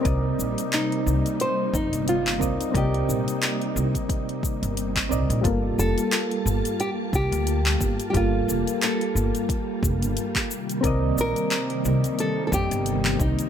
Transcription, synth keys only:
X:1
M:4/4
L:1/8
Q:"Swing 16ths" 1/4=89
K:Gm
V:1 name="Synth keys"
[CBde]6- [CBde] [CBde] | [CBde]6- [CBde] [CBde] | [G,B,FA]6- [G,B,FA] z | [G,B,FA]6- [G,B,FA] z |
[CBde]6- [CBde] z |]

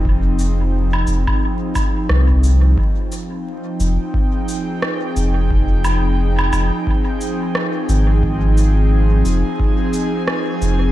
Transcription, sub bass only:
X:1
M:4/4
L:1/8
Q:"Swing 16ths" 1/4=88
K:Fm
V:1 name="Sub bass" clef=bass
F,,,3 F,,, z2 C,,2 | z3 F,,, z3 F,,,- | F,,,3 F,,, z3 A,,,- | A,,,3 F,,, z3 F,,, |]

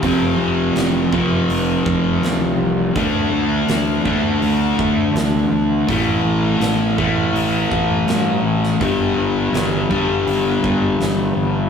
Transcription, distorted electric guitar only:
X:1
M:4/4
L:1/8
Q:1/4=82
K:Dm
V:1 name="Distorted electric guitar" clef=bass
[F,,C,F,]3 [F,,C,F,]4- [F,,C,F,] | [D,A,D]3 [D,A,D]4- [D,A,D] | [A,,E,A,]3 [A,,E,A,]4- [A,,E,A,] | [G,,D,G,]3 [G,,D,G,]4- [G,,D,G,] |]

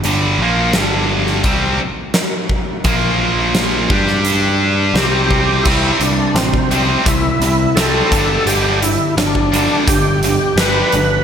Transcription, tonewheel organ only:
X:1
M:4/4
L:1/8
Q:1/4=85
K:C
V:1 name="Tonewheel organ"
z8 | z6 G2 | E D C2 E2 A2 | G E D2 G2 B2 |]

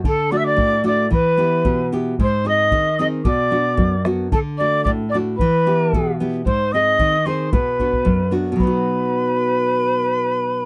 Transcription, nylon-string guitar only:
X:1
M:2/4
L:1/8
Q:1/4=113
K:Bm
V:1 name="Nylon-string guitar"
D, [A,DF] A,, [A,DF] | E, [B,EG] B,, [B,EG] | ^G,, [^B,^D^G] ^D, [B,DG] | B,, [B,DF] F,, [B,DF] |
D, [A,DF] A,, [A,DF] | E, [B,EG] B,, [B,EG] | ^G,, [^B,^D^G] ^D, [B,DG] | B,, [B,DF] F,, [B,DF] |
[B,,F,B,^DF]4- | [B,,F,B,^DF]4 |]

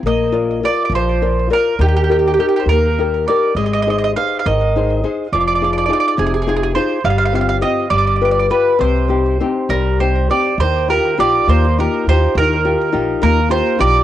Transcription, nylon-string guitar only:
X:1
M:6/8
L:1/8
Q:3/8=68
K:Cm
V:1 name="Nylon-string guitar"
B, [FBd] [FBd] F, [FBd] [FBd] | E, [EGB] [EGB] B, [EGB] [EGB] | A, [EAc] [EAc] E, [EAc] [EAc] | F, [EFA] [EFA] C, [EFA] [EFA] |
G, [CFG] [CFG] G, [FG=B] [FGB] | C, [CEG] [CEG] G, [CEG] [CEG] | [K:Eb] E, [EFG] [EFG] B, [EFG] [EFG] | E, [EFG] [EFG] B, [EFG] [EFG] |]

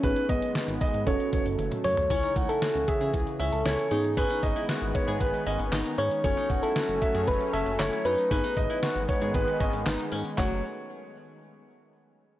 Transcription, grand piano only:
X:1
M:4/4
L:1/16
Q:1/4=116
K:F#dor
V:1 name="Grand piano"
B2 d2 z2 d2 c2 c z4 z | c2 f2 z2 e2 z2 e2 c3 z | B2 d2 z2 c2 B2 d z4 z | c2 f2 z2 e2 z2 e2 c3 z |
B2 d2 z2 c2 B2 d z4 z | c2 z12 z2 |]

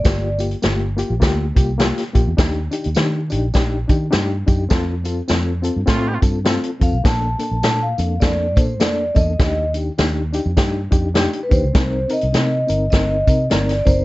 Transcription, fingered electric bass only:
X:1
M:4/4
L:1/16
Q:"Swing" 1/4=102
K:Eblyd
V:1 name="Fingered electric bass" clef=bass
G,,,4 G,,,3 B,,, D,,2 C,,3 z B,,, =E,, | E,,2 z E,, E,2 B,,,2 B,,,2 E,2 G,,2 _G,,2 | F,,4 F,,3 G,, A,,2 G,,3 z F,, _C,, | B,,,2 z B,,, B,,2 F,,2 F,,2 B,,2 F,,2 =E,,2 |
E,,4 E,,3 F,, G,,2 F,,3 z E,, _D,, | C,,2 z C,, C,2 G,,,2 G,,,2 C,2 G,,,2 _G,,,2 |]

